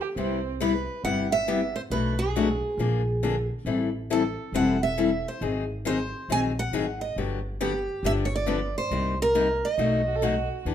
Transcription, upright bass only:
0, 0, Header, 1, 2, 480
1, 0, Start_track
1, 0, Tempo, 437318
1, 185, Time_signature, 4, 2, 24, 8
1, 11795, End_track
2, 0, Start_track
2, 0, Title_t, "Upright bass"
2, 0, Program_c, 0, 32
2, 179, Note_on_c, 0, 36, 82
2, 950, Note_off_c, 0, 36, 0
2, 1138, Note_on_c, 0, 31, 76
2, 1909, Note_off_c, 0, 31, 0
2, 2090, Note_on_c, 0, 35, 75
2, 2864, Note_off_c, 0, 35, 0
2, 3046, Note_on_c, 0, 34, 85
2, 3821, Note_off_c, 0, 34, 0
2, 4004, Note_on_c, 0, 33, 75
2, 4780, Note_off_c, 0, 33, 0
2, 4966, Note_on_c, 0, 28, 78
2, 5741, Note_off_c, 0, 28, 0
2, 5940, Note_on_c, 0, 32, 80
2, 6709, Note_off_c, 0, 32, 0
2, 6898, Note_on_c, 0, 34, 76
2, 7308, Note_off_c, 0, 34, 0
2, 7372, Note_on_c, 0, 32, 64
2, 7785, Note_off_c, 0, 32, 0
2, 7862, Note_on_c, 0, 31, 79
2, 8630, Note_off_c, 0, 31, 0
2, 8811, Note_on_c, 0, 31, 85
2, 9583, Note_off_c, 0, 31, 0
2, 9777, Note_on_c, 0, 36, 80
2, 10547, Note_off_c, 0, 36, 0
2, 10732, Note_on_c, 0, 35, 81
2, 11505, Note_off_c, 0, 35, 0
2, 11694, Note_on_c, 0, 40, 75
2, 11795, Note_off_c, 0, 40, 0
2, 11795, End_track
0, 0, End_of_file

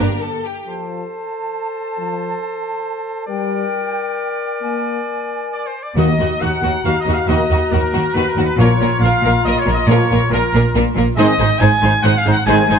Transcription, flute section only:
0, 0, Header, 1, 2, 480
1, 0, Start_track
1, 0, Tempo, 437318
1, 736, Time_signature, 3, 2, 24, 8
1, 4078, Tempo, 449102
1, 6958, Tempo, 433213
1, 14027, End_track
2, 0, Start_track
2, 0, Title_t, "Flute section"
2, 0, Program_c, 0, 73
2, 744, Note_on_c, 0, 81, 42
2, 3557, Note_off_c, 0, 81, 0
2, 3602, Note_on_c, 0, 79, 59
2, 5006, Note_off_c, 0, 79, 0
2, 5033, Note_on_c, 0, 80, 46
2, 6224, Note_off_c, 0, 80, 0
2, 6490, Note_on_c, 0, 82, 69
2, 9325, Note_off_c, 0, 82, 0
2, 9371, Note_on_c, 0, 82, 80
2, 11929, Note_off_c, 0, 82, 0
2, 12236, Note_on_c, 0, 84, 91
2, 12302, Note_off_c, 0, 84, 0
2, 12475, Note_on_c, 0, 84, 82
2, 12541, Note_off_c, 0, 84, 0
2, 12724, Note_on_c, 0, 84, 80
2, 12791, Note_off_c, 0, 84, 0
2, 12950, Note_on_c, 0, 84, 75
2, 13017, Note_off_c, 0, 84, 0
2, 13194, Note_on_c, 0, 84, 78
2, 13260, Note_off_c, 0, 84, 0
2, 13454, Note_on_c, 0, 84, 80
2, 13520, Note_off_c, 0, 84, 0
2, 13689, Note_on_c, 0, 84, 91
2, 13756, Note_off_c, 0, 84, 0
2, 13949, Note_on_c, 0, 84, 81
2, 14015, Note_off_c, 0, 84, 0
2, 14027, End_track
0, 0, End_of_file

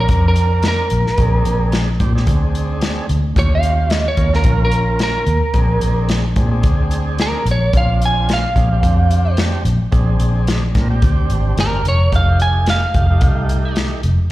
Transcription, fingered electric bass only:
0, 0, Header, 1, 2, 480
1, 0, Start_track
1, 0, Tempo, 546946
1, 1033, Time_signature, 4, 2, 24, 8
1, 12565, End_track
2, 0, Start_track
2, 0, Title_t, "Fingered electric bass"
2, 0, Program_c, 0, 33
2, 81, Note_on_c, 0, 41, 82
2, 704, Note_off_c, 0, 41, 0
2, 803, Note_on_c, 0, 34, 82
2, 915, Note_off_c, 0, 34, 0
2, 1040, Note_on_c, 0, 34, 106
2, 1246, Note_off_c, 0, 34, 0
2, 1279, Note_on_c, 0, 34, 82
2, 1757, Note_on_c, 0, 46, 96
2, 1770, Note_off_c, 0, 34, 0
2, 1963, Note_off_c, 0, 46, 0
2, 1993, Note_on_c, 0, 38, 94
2, 2619, Note_off_c, 0, 38, 0
2, 2716, Note_on_c, 0, 38, 85
2, 2923, Note_off_c, 0, 38, 0
2, 2953, Note_on_c, 0, 39, 100
2, 3579, Note_off_c, 0, 39, 0
2, 3663, Note_on_c, 0, 39, 82
2, 3875, Note_off_c, 0, 39, 0
2, 3904, Note_on_c, 0, 34, 84
2, 4534, Note_off_c, 0, 34, 0
2, 4622, Note_on_c, 0, 39, 82
2, 4742, Note_off_c, 0, 39, 0
2, 4859, Note_on_c, 0, 34, 109
2, 5073, Note_off_c, 0, 34, 0
2, 5098, Note_on_c, 0, 34, 82
2, 5585, Note_on_c, 0, 46, 99
2, 5598, Note_off_c, 0, 34, 0
2, 5797, Note_off_c, 0, 46, 0
2, 5826, Note_on_c, 0, 38, 99
2, 6456, Note_off_c, 0, 38, 0
2, 6542, Note_on_c, 0, 34, 85
2, 6755, Note_off_c, 0, 34, 0
2, 6786, Note_on_c, 0, 34, 111
2, 7417, Note_off_c, 0, 34, 0
2, 7512, Note_on_c, 0, 34, 86
2, 7722, Note_off_c, 0, 34, 0
2, 7748, Note_on_c, 0, 41, 90
2, 8378, Note_off_c, 0, 41, 0
2, 8467, Note_on_c, 0, 34, 90
2, 8586, Note_off_c, 0, 34, 0
2, 8710, Note_on_c, 0, 34, 106
2, 8921, Note_off_c, 0, 34, 0
2, 8952, Note_on_c, 0, 34, 85
2, 9435, Note_on_c, 0, 46, 92
2, 9448, Note_off_c, 0, 34, 0
2, 9644, Note_off_c, 0, 46, 0
2, 9679, Note_on_c, 0, 38, 96
2, 9886, Note_off_c, 0, 38, 0
2, 9915, Note_on_c, 0, 32, 77
2, 10131, Note_off_c, 0, 32, 0
2, 10155, Note_on_c, 0, 31, 85
2, 10372, Note_off_c, 0, 31, 0
2, 10403, Note_on_c, 0, 29, 76
2, 10616, Note_off_c, 0, 29, 0
2, 10639, Note_on_c, 0, 29, 103
2, 11266, Note_off_c, 0, 29, 0
2, 11364, Note_on_c, 0, 29, 80
2, 11570, Note_off_c, 0, 29, 0
2, 11601, Note_on_c, 0, 36, 89
2, 12227, Note_off_c, 0, 36, 0
2, 12319, Note_on_c, 0, 29, 88
2, 12435, Note_off_c, 0, 29, 0
2, 12565, End_track
0, 0, End_of_file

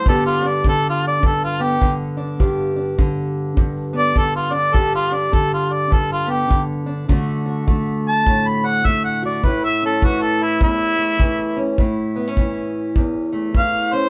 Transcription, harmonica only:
0, 0, Header, 1, 2, 480
1, 0, Start_track
1, 0, Tempo, 586510
1, 49, Time_signature, 4, 2, 24, 8
1, 11531, End_track
2, 0, Start_track
2, 0, Title_t, "Harmonica"
2, 0, Program_c, 0, 22
2, 71, Note_on_c, 0, 69, 76
2, 209, Note_off_c, 0, 69, 0
2, 214, Note_on_c, 0, 65, 82
2, 394, Note_on_c, 0, 74, 78
2, 406, Note_off_c, 0, 65, 0
2, 536, Note_off_c, 0, 74, 0
2, 562, Note_on_c, 0, 69, 83
2, 700, Note_off_c, 0, 69, 0
2, 733, Note_on_c, 0, 65, 79
2, 866, Note_off_c, 0, 65, 0
2, 881, Note_on_c, 0, 74, 84
2, 1036, Note_on_c, 0, 69, 83
2, 1048, Note_off_c, 0, 74, 0
2, 1176, Note_off_c, 0, 69, 0
2, 1181, Note_on_c, 0, 65, 77
2, 1325, Note_on_c, 0, 67, 89
2, 1338, Note_off_c, 0, 65, 0
2, 1575, Note_off_c, 0, 67, 0
2, 3256, Note_on_c, 0, 74, 110
2, 3420, Note_on_c, 0, 69, 89
2, 3432, Note_off_c, 0, 74, 0
2, 3564, Note_off_c, 0, 69, 0
2, 3569, Note_on_c, 0, 65, 81
2, 3721, Note_on_c, 0, 74, 92
2, 3733, Note_off_c, 0, 65, 0
2, 3887, Note_on_c, 0, 69, 86
2, 3900, Note_off_c, 0, 74, 0
2, 4041, Note_off_c, 0, 69, 0
2, 4053, Note_on_c, 0, 65, 87
2, 4209, Note_on_c, 0, 74, 84
2, 4221, Note_off_c, 0, 65, 0
2, 4369, Note_on_c, 0, 69, 84
2, 4381, Note_off_c, 0, 74, 0
2, 4522, Note_off_c, 0, 69, 0
2, 4533, Note_on_c, 0, 65, 73
2, 4690, Note_on_c, 0, 74, 84
2, 4702, Note_off_c, 0, 65, 0
2, 4850, Note_on_c, 0, 69, 89
2, 4863, Note_off_c, 0, 74, 0
2, 5003, Note_off_c, 0, 69, 0
2, 5014, Note_on_c, 0, 65, 85
2, 5161, Note_on_c, 0, 67, 91
2, 5173, Note_off_c, 0, 65, 0
2, 5413, Note_off_c, 0, 67, 0
2, 6616, Note_on_c, 0, 81, 98
2, 6940, Note_on_c, 0, 83, 84
2, 6952, Note_off_c, 0, 81, 0
2, 7090, Note_on_c, 0, 78, 99
2, 7102, Note_off_c, 0, 83, 0
2, 7249, Note_on_c, 0, 76, 86
2, 7262, Note_off_c, 0, 78, 0
2, 7399, Note_off_c, 0, 76, 0
2, 7404, Note_on_c, 0, 78, 81
2, 7561, Note_off_c, 0, 78, 0
2, 7576, Note_on_c, 0, 74, 81
2, 7738, Note_on_c, 0, 71, 79
2, 7750, Note_off_c, 0, 74, 0
2, 7888, Note_off_c, 0, 71, 0
2, 7892, Note_on_c, 0, 76, 85
2, 8045, Note_off_c, 0, 76, 0
2, 8067, Note_on_c, 0, 69, 81
2, 8220, Note_on_c, 0, 66, 82
2, 8232, Note_off_c, 0, 69, 0
2, 8367, Note_on_c, 0, 69, 83
2, 8379, Note_off_c, 0, 66, 0
2, 8535, Note_on_c, 0, 64, 75
2, 8547, Note_off_c, 0, 69, 0
2, 8687, Note_off_c, 0, 64, 0
2, 8700, Note_on_c, 0, 64, 98
2, 9626, Note_off_c, 0, 64, 0
2, 11112, Note_on_c, 0, 77, 87
2, 11404, Note_on_c, 0, 72, 84
2, 11417, Note_off_c, 0, 77, 0
2, 11531, Note_off_c, 0, 72, 0
2, 11531, End_track
0, 0, End_of_file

